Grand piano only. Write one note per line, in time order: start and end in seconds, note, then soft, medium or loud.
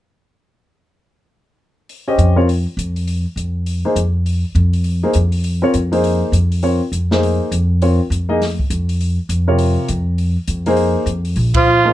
2.08 2.35 C#4 medium
2.08 2.35 G4 medium
2.08 2.35 C5 soft
2.08 2.35 D#5 medium
2.36 2.47 C4 medium
2.36 2.47 F4 medium
2.36 2.46 A#4 soft
2.36 2.47 C#5 medium
3.85 3.95 A#3 soft
3.85 3.95 D#4 soft
3.85 3.95 G#4 soft
3.85 3.95 C5 medium
5.03 5.14 A#3 medium
5.03 5.13 D#4 soft
5.03 5.13 G#4 soft
5.03 5.14 C5 medium
5.62 5.72 C4 medium
5.62 5.73 F4 medium
5.62 5.73 A#4 medium
5.62 5.73 C#5 medium
5.92 6.31 A#3 medium
5.92 6.31 D#4 medium
5.92 6.31 G#4 soft
5.92 6.31 C5 medium
6.63 6.79 C4 soft
6.63 6.79 F4 soft
6.63 6.79 A#4 soft
6.63 6.80 C#5 medium
7.11 7.50 A#3 medium
7.11 7.50 D#4 soft
7.11 7.50 G#4 soft
7.11 7.50 C5 medium
7.82 7.98 C4 soft
7.82 7.98 F4 soft
7.82 7.99 A#4 soft
7.82 7.98 C#5 soft
8.29 8.39 A#3 medium
8.29 8.39 D#4 medium
8.29 8.40 G#4 soft
8.29 8.39 D#5 medium
9.48 9.86 C3 medium
9.48 9.86 F4 soft
9.48 9.86 A#4 soft
9.48 9.86 C#5 medium
10.66 11.05 A#3 medium
10.66 11.05 D#4 medium
10.66 11.05 G#4 medium
10.66 11.05 C5 medium
11.85 11.93 A#3 medium
11.85 11.93 D#4 soft
11.85 11.93 G#4 soft
11.85 11.93 C5 medium